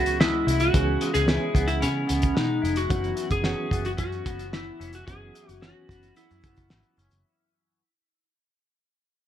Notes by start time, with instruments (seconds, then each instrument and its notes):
Already playing: picked electric bass C#2, clean electric guitar C#3 G#3 B3 E4, reed electric piano E3 B3 C#4 G#4, electric slide guitar F#4
0.06 closed hi-hat
0.21 clean electric guitar G#3, electric slide guitar E4, snare
0.47 picked electric bass C2, clean electric guitar E4, closed hi-hat
0.60 electric slide guitar F#4, closed hi-hat
0.73 picked electric bass C#2, clean electric guitar C#3, reed electric piano E3 B3 C#4 G#4, kick, closed hi-hat
1.01 clean electric guitar G#3, closed hi-hat
1.14 picked electric bass C#2, electric slide guitar G#4, snare, closed hi-hat
1.27 reed electric piano E3 B3 C#4 G#4, clean electric guitar E4, snare
1.55 picked electric bass C#2, clean electric guitar B3, kick, closed hi-hat
1.68 electric slide guitar E4, closed hi-hat
1.80 picked electric bass C#3, electric slide guitar C#4, clean electric guitar E4, closed hi-hat
2.07 picked electric bass C#2, clean electric guitar B3, closed hi-hat
2.22 kick, closed hi-hat
2.35 picked electric bass B2, clean electric guitar G#3, electric slide guitar D#4, snare
2.62 picked electric bass F1, clean electric guitar E4, closed hi-hat
2.76 electric slide guitar F#4, closed hi-hat
2.89 picked electric bass F#1, clean electric guitar F#2, reed electric piano E3 B3 C#4 F#4, kick, closed hi-hat
3.04 closed hi-hat
3.16 clean electric guitar E3, closed hi-hat
3.31 picked electric bass F#1, electric slide guitar G#4, kick, closed hi-hat
3.42 reed electric piano E3 B3 C#4 F#4, clean electric guitar C#4, snare
3.71 picked electric bass F#1, clean electric guitar B3, kick, closed hi-hat
3.85 electric slide guitar F#4, closed hi-hat
3.98 picked electric bass F#2, clean electric guitar C#4, electric slide guitar F#4, kick, closed hi-hat
4.12 closed hi-hat
4.26 picked electric bass F#1, clean electric guitar B3, kick, closed hi-hat
4.39 closed hi-hat
4.53 clean electric guitar E3, electric slide guitar E4, snare
4.80 picked electric bass F1, clean electric guitar C#4, closed hi-hat
4.93 electric slide guitar F#4, closed hi-hat
5.07 picked electric bass F#1, clean electric guitar F#2, reed electric piano E3 B3 C#4 F#4, electric slide guitar G#4, kick, closed hi-hat
5.34 clean electric guitar E3, closed hi-hat
5.49 picked electric bass F#1, electric slide guitar F#4, closed hi-hat
5.62 reed electric piano E3 B3 C#4 F#4, clean electric guitar C#4, electric slide guitar F#4, snare
5.89 picked electric bass F#1, clean electric guitar B3, kick, closed hi-hat
6.03 closed hi-hat
6.16 clean electric guitar B3, electric slide guitar E4, closed hi-hat
6.31 picked electric bass F#2, clean electric guitar C#4, closed hi-hat
6.44 picked electric bass F#1, clean electric guitar B3, kick, closed hi-hat
6.57 picked electric bass F#1, kick, closed hi-hat
6.70 picked electric bass G#1, clean electric guitar E3, snare
6.83 closed hi-hat
6.98 picked electric bass F#1, clean electric guitar C#4, closed hi-hat
7.11 picked electric bass F#1, closed hi-hat